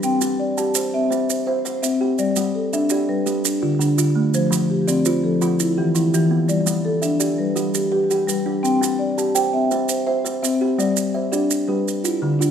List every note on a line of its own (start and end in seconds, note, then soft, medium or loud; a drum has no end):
0.00 0.40 C4 medium
0.00 0.22 D4 medium
0.00 0.21 B4 medium
0.00 0.58 G5 medium
0.00 maracas medium
0.21 0.57 C4 medium
0.21 maracas medium
0.39 0.93 D5 medium
0.58 0.94 G4 medium
0.58 1.11 A5 medium
0.58 maracas medium
0.75 1.09 C5 medium
0.75 maracas medium
0.94 1.30 C4 medium
0.94 1.47 E5 medium
1.10 1.47 C4 medium
1.10 1.64 C5 medium
1.10 maracas medium
1.29 1.46 C5 medium
1.29 maracas medium
1.47 1.64 C5 medium
1.47 1.82 E5 medium
1.65 2.01 C5 medium
1.65 2.19 C5 medium
1.65 maracas medium
1.83 2.19 C4 medium
1.83 2.37 E5 medium
1.83 maracas medium
2.01 2.37 G4 medium
2.18 2.55 G3 medium
2.18 2.73 D5 medium
2.18 maracas medium
2.36 2.73 G3 medium
2.36 maracas medium
2.55 3.09 A4 medium
2.73 3.09 D4 medium
2.73 3.27 E5 medium
2.73 maracas medium
2.90 3.25 G4 medium
2.90 3.45 D5 medium
2.90 maracas medium
3.09 3.27 G3 medium
3.09 3.45 B4 medium
3.26 3.44 G3 medium
3.26 3.62 G4 medium
3.26 maracas soft
3.45 3.79 D4 medium
3.45 maracas medium
3.62 3.97 D3 medium
3.62 3.97 F4 medium
3.79 4.16 D3 medium
3.79 4.34 D4 medium
3.79 maracas medium
3.98 4.34 D3 medium
3.98 4.52 F4 medium
3.98 maracas medium
4.15 4.52 A3 medium
4.34 4.70 F3 medium
4.34 4.88 C5 medium
4.34 maracas medium
4.51 4.87 F3 medium
4.51 maracas medium
4.70 5.23 G4 medium
4.88 5.24 C4 medium
4.88 5.41 D5 medium
4.88 maracas medium
5.05 5.40 F4 medium
5.05 5.59 C5 medium
5.05 maracas medium
5.24 5.42 F3 medium
5.24 5.60 A4 medium
5.41 5.59 F3 medium
5.41 5.77 F4 medium
5.41 maracas medium
5.60 5.94 E4 medium
5.60 maracas medium
5.78 6.13 E3 medium
5.78 6.12 G4 medium
5.95 6.31 E3 medium
5.95 6.49 E4 medium
5.95 maracas medium
6.13 6.49 E3 medium
6.13 6.67 G4 medium
6.13 maracas medium
6.31 6.67 B3 medium
6.48 6.84 G3 medium
6.48 7.03 D5 medium
6.48 maracas medium
6.66 7.02 G3 medium
6.66 maracas medium
6.85 7.39 A4 medium
7.02 7.39 D4 medium
7.02 7.56 E5 medium
7.02 maracas medium
7.20 7.55 G4 medium
7.20 7.74 D5 medium
7.20 maracas medium
7.38 7.74 G3 medium
7.38 7.92 B4 medium
7.56 7.92 G3 medium
7.56 8.09 G4 medium
7.56 maracas medium
7.74 7.91 G4 medium
7.74 maracas medium
7.92 8.09 G4 medium
7.92 8.27 B4 medium
8.10 8.64 G4 medium
8.10 8.46 G4 medium
8.10 maracas medium
8.27 8.63 G3 medium
8.27 8.82 B4 medium
8.27 maracas medium
8.46 8.82 D4 medium
8.63 8.99 C4 medium
8.63 9.17 G5 medium
8.63 maracas medium
8.81 9.17 C4 medium
8.81 maracas medium
8.99 9.53 D5 medium
9.18 9.54 G4 medium
9.18 9.72 A5 medium
9.18 maracas medium
9.35 9.70 C5 medium
9.35 9.89 G5 medium
9.35 maracas medium
9.53 9.89 C4 medium
9.53 10.07 E5 medium
9.71 10.07 C4 medium
9.71 10.23 C5 medium
9.71 maracas soft
9.89 10.05 C5 medium
9.89 maracas medium
10.07 10.43 C5 medium
10.07 10.41 E5 medium
10.25 10.61 C5 medium
10.25 maracas medium
10.43 10.79 C4 medium
10.43 10.97 E5 medium
10.43 maracas medium
10.61 10.97 G4 medium
10.78 11.15 G3 medium
10.78 11.33 D5 medium
10.78 maracas medium
10.97 maracas medium
11.14 11.69 C5 medium
11.14 11.69 E5 medium
11.32 11.68 D4 medium
11.32 11.67 G4 medium
11.32 11.86 D5 medium
11.32 maracas medium
11.51 maracas medium
11.68 11.86 G3 medium
11.68 11.87 G3 medium
11.68 12.04 G4 medium
11.68 12.04 B4 medium
11.88 maracas medium
12.03 12.51 E4 medium
12.03 12.39 F4 medium
12.03 maracas medium
12.22 12.51 D3 medium
12.39 12.51 D4 medium
12.39 12.51 F4 medium
12.39 maracas medium